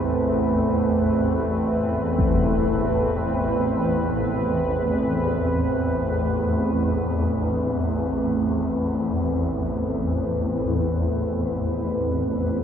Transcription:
0.00 12.64 A1 medium
0.00 12.64 E2 medium
0.00 12.64 A3 medium
0.00 12.64 C4 medium
0.00 12.64 B4 medium
2.18 impact medium
2.72 8.95 A2 soft
7.40 12.64 D4 soft

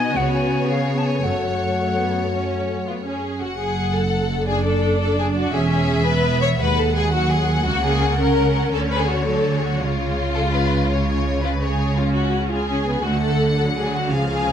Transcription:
0.00 0.14 B2 medium
0.00 0.13 B3 medium
0.00 1.20 B3 medium
0.00 0.12 D#4 medium
0.00 0.65 F#4 medium
0.00 0.14 D#5 medium
0.00 0.18 G#5 medium
0.15 0.49 C#2 soft
0.15 1.22 C#3 soft
0.15 0.68 B3 soft
0.15 0.68 F#4 soft
0.15 3.22 C#5 medium
0.15 0.33 F#5 medium
0.34 0.69 G#5 medium
0.69 1.23 B3 soft
0.69 1.23 G#4 soft
0.69 1.24 G#4 soft
0.69 0.99 F5 medium
0.98 1.07 A5 soft
1.05 1.25 G#5 soft
1.23 1.57 F#1 soft
1.23 3.22 F#2 soft
1.23 1.73 A3 soft
1.23 3.23 A3 soft
1.23 3.23 F#4 soft
1.23 2.83 A4 soft
1.23 2.86 F#5 soft
1.78 1.95 A3 soft
1.96 2.32 B3 soft
2.33 2.86 C#4 soft
2.87 3.04 B3 soft
2.87 2.94 F4 soft
3.04 3.40 C#4 soft
3.04 3.39 G#4 soft
3.40 5.50 F#1 soft
3.40 5.50 F#2 soft
3.40 3.59 F#4 medium
3.40 4.44 F#5 soft
3.59 3.94 G#4 medium
3.96 4.48 A4 medium
4.47 5.50 D4 medium
4.47 4.65 G#4 medium
4.47 5.52 D5 soft
4.65 4.99 A4 medium
5.00 5.18 A4 medium
5.19 5.26 G#4 medium
5.37 5.54 F#4 medium
5.53 6.58 E1 medium
5.53 6.59 E2 medium
5.53 6.07 C#4 medium
5.53 5.70 G#4 medium
5.53 6.61 E5 soft
5.71 6.07 G#4 medium
6.06 6.60 B3 medium
6.06 6.43 B4 medium
6.42 6.49 C#5 medium
6.60 7.65 D#2 medium
6.60 7.65 D#2 soft
6.60 7.13 G#3 medium
6.60 6.78 B4 medium
6.60 8.74 F#5 medium
6.78 6.96 A4 medium
6.95 7.13 G#4 medium
7.14 7.67 F#3 soft
7.14 7.31 F#4 medium
7.31 7.67 G#4 medium
7.66 8.74 C#2 medium
7.66 8.74 C#3 medium
7.66 8.20 A#3 medium
7.66 7.84 F#4 medium
7.84 8.19 G#4 medium
8.20 9.25 C#4 medium
8.20 8.73 A#4 medium
8.74 9.79 D2 soft
8.74 9.79 D3 medium
8.74 8.81 A4 medium
8.74 10.28 C#5 soft
8.91 9.00 B4 medium
9.01 9.10 G#4 medium
9.08 9.27 F#4 medium
9.27 9.80 F#3 soft
9.27 9.53 A4 medium
9.55 9.64 G#4 soft
9.63 9.81 F#4 medium
9.80 13.04 C#2 soft
9.80 13.04 C#3 soft
9.80 11.70 G#3 soft
9.80 11.43 F4 medium
10.35 10.42 A4 medium
10.52 10.88 B4 soft
10.89 11.42 C#5 soft
11.43 11.51 F4 soft
11.43 11.61 B4 soft
11.62 11.97 G#4 soft
11.62 11.97 C#5 soft
11.97 12.47 C#4 soft
11.97 12.15 F4 medium
12.15 12.50 F#4 medium
12.50 12.68 F4 medium
12.50 13.03 G#4 medium
12.68 12.86 C#4 soft
12.86 13.04 B3 soft
13.04 14.09 D2 soft
13.04 14.09 D3 soft
13.04 13.57 A3 soft
13.04 13.22 F#4 medium
13.04 14.11 F#5 soft
13.21 13.57 A4 medium
13.58 14.10 F#3 soft
13.58 13.65 A4 medium
13.77 13.93 G#4 medium
13.94 14.11 F#4 medium
14.10 14.52 C#2 medium
14.10 14.52 C#3 soft
14.10 14.52 F3 soft
14.10 14.28 G#4 medium
14.10 14.52 F5 soft
14.30 14.52 G#4 medium

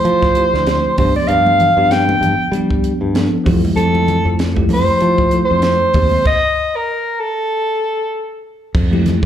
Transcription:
0.00 0.28 F3 medium
0.00 0.28 A3 medium
0.00 0.29 E4 medium
0.00 0.29 A4 medium
0.00 0.96 C5 medium
0.05 0.44 F3 medium
0.05 closed hi-hat medium
0.23 kick medium
0.23 snare soft
0.35 0.92 F3 medium
0.35 0.92 A3 medium
0.35 0.93 E4 medium
0.35 0.93 G4 medium
0.35 closed hi-hat medium
0.54 0.79 D2 medium
0.54 snare soft
0.67 snare medium
0.67 closed hi-hat medium
0.97 1.12 G2 medium
0.97 1.68 F3 medium
0.97 1.68 B3 medium
0.97 1.69 D4 medium
0.97 1.69 G4 medium
0.97 1.14 C5 medium
0.97 kick loud
0.97 open hi-hat medium
0.97 high conga medium
0.97 low conga medium
1.16 1.29 D5 medium
1.16 high conga medium
1.27 1.69 G2 medium
1.27 1.93 F5 loud
1.27 closed hi-hat medium
1.46 high conga medium
1.60 closed hi-hat medium
1.60 low conga medium
1.77 2.14 G2 medium
1.77 2.46 F3 medium
1.77 2.46 B3 medium
1.77 2.46 D4 medium
1.77 2.46 G4 medium
1.91 2.53 G5 medium
1.91 snare medium
1.91 closed hi-hat medium
2.09 high conga medium
2.21 2.36 G2 medium
2.21 closed hi-hat medium
2.21 low conga medium
2.39 muted fingered electric bass stroke soft
2.52 3.09 F3 medium
2.52 2.92 G3 medium
2.52 3.10 B3 medium
2.52 3.10 D4 medium
2.52 closed hi-hat medium
2.56 3.11 G4 medium
2.71 kick medium
2.84 closed hi-hat medium
3.01 3.27 G2 medium
3.14 3.43 F3 medium
3.14 3.46 B3 medium
3.14 3.46 D4 medium
3.14 3.47 A4 medium
3.14 snare loud
3.14 closed hi-hat medium
3.44 3.61 F2 medium
3.44 3.88 F3 medium
3.44 3.88 A3 medium
3.44 3.89 E4 medium
3.44 3.89 G4 medium
3.44 kick medium
3.44 open hi-hat medium
3.44 high conga medium
3.44 low conga medium
3.65 high conga medium
3.76 4.16 F2 medium
3.76 4.35 A4 medium
3.76 closed hi-hat medium
3.93 4.49 F3 medium
3.93 4.49 A3 medium
3.93 4.49 E4 medium
3.93 4.50 A4 medium
3.93 high conga medium
4.08 closed hi-hat medium
4.08 low conga medium
4.25 4.62 F2 medium
4.39 snare medium
4.39 closed hi-hat medium
4.55 5.25 F3 medium
4.55 5.25 A3 medium
4.55 5.25 E4 medium
4.55 5.26 G4 medium
4.55 kick medium
4.55 high conga medium
4.69 4.84 F2 medium
4.69 open hi-hat medium
4.69 low conga medium
4.73 5.40 C5 medium
4.88 muted fingered electric bass stroke soft
5.01 5.41 F3 medium
5.01 closed hi-hat medium
5.18 kick medium
5.31 5.88 F3 medium
5.31 5.88 A3 medium
5.31 5.89 E4 medium
5.31 5.89 A4 medium
5.31 closed hi-hat medium
5.45 6.23 C5 medium
5.51 5.76 F2 medium
5.62 snare medium
5.62 closed hi-hat medium
5.93 6.09 D#2 medium
5.93 6.22 D#3 medium
5.93 6.22 A#3 medium
5.93 6.23 C4 medium
5.93 6.23 G4 medium
5.93 kick loud
5.93 open hi-hat medium
5.93 high conga medium
5.93 low conga medium
6.11 high conga medium
6.25 6.77 D#5 loud
6.25 kick medium
6.25 crash medium
6.76 7.21 A#4 medium
7.20 8.43 A4 medium
8.74 9.14 F2 medium
8.74 kick medium
8.74 crash medium
8.91 9.26 F3 medium
8.91 9.26 A3 medium
8.91 9.26 E4 medium
8.91 9.26 G4 medium
8.91 high conga medium
9.06 snare soft
9.06 closed hi-hat soft
9.06 low conga medium

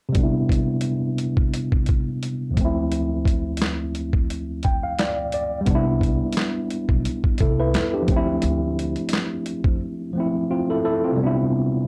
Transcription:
0.09 2.49 C3 medium
0.09 2.51 G3 medium
0.15 2.53 B3 medium
0.15 kick loud
0.15 closed hi-hat medium
0.19 2.55 D4 medium
0.19 2.57 E4 medium
0.49 kick medium
0.49 closed hi-hat medium
0.81 closed hi-hat medium
1.18 closed hi-hat medium
1.37 kick medium
1.54 closed hi-hat medium
1.72 kick medium
1.86 kick medium
1.86 closed hi-hat medium
2.23 closed hi-hat medium
2.51 5.26 D2 medium
2.51 5.27 F3 medium
2.57 5.29 A3 medium
2.57 5.31 C4 medium
2.57 kick medium
2.57 closed hi-hat medium
2.65 5.33 E4 medium
2.92 closed hi-hat medium
3.25 kick medium
3.25 closed hi-hat medium
3.57 closed hi-hat medium
3.62 snare loud
3.62 clap medium
3.95 closed hi-hat medium
4.13 kick medium
4.30 closed hi-hat medium
4.63 4.82 G5 medium
4.63 kick medium
4.63 closed hi-hat medium
4.84 4.97 F5 medium
4.99 5.31 D5 medium
4.99 snare loud
4.99 clap medium
4.99 closed hi-hat medium
5.32 5.65 D5 medium
5.32 closed hi-hat medium
5.61 8.01 G3 medium
5.66 6.17 C2 medium
5.66 8.04 B3 medium
5.66 kick medium
5.66 closed hi-hat medium
5.71 7.38 D4 medium
5.75 7.40 E4 medium
6.01 kick medium
6.01 closed hi-hat medium
6.33 closed hi-hat medium
6.37 snare loud
6.37 clap medium
6.70 closed hi-hat medium
6.89 7.04 B1 medium
6.89 kick medium
7.05 closed hi-hat medium
7.24 kick medium
7.38 7.72 C2 medium
7.38 7.58 E4 soft
7.38 7.58 A4 medium
7.38 kick medium
7.38 closed hi-hat medium
7.59 7.92 E4 medium
7.59 7.92 B4 medium
7.74 8.09 E2 medium
7.74 snare loud
7.74 clap medium
7.74 closed hi-hat medium
7.94 8.27 D4 medium
7.94 8.26 G4 medium
8.02 10.08 F3 medium
8.07 8.41 D2 medium
8.07 10.11 A3 medium
8.07 kick medium
8.07 closed hi-hat medium
8.11 10.13 C4 medium
8.16 10.15 E4 medium
8.42 8.93 D2 medium
8.42 closed hi-hat medium
8.79 closed hi-hat medium
8.96 closed hi-hat soft
9.09 closed hi-hat medium
9.13 snare loud
9.13 clap medium
9.46 closed hi-hat medium
9.64 9.79 F2 medium
9.64 kick medium
10.13 11.18 F3 medium
10.13 11.19 A3 soft
10.17 10.50 C4 soft
10.17 10.52 E4 medium
10.51 10.69 C4 soft
10.51 10.68 F4 medium
10.70 10.84 E4 medium
10.70 10.84 A4 medium
10.85 11.03 E4 medium
10.85 11.03 A4 medium
11.04 11.37 C4 medium
11.04 11.37 F4 medium
11.13 11.87 C3 medium
11.13 11.87 G3 medium
11.20 11.87 B3 medium
11.20 11.87 D4 medium
11.26 11.87 E4 medium

